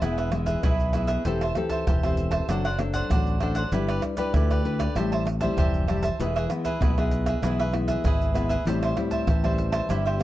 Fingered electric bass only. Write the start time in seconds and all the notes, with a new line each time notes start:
0.02 E1
0.64 B1
1.25 E1
1.87 E1
2.49 F#1
3.10 A1
3.72 G1
4.34 D2
4.95 A1
5.57 F1
6.20 E1
6.81 B1
7.42 B1
8.04 G#1
8.65 A1
9.27 A1
9.89 G1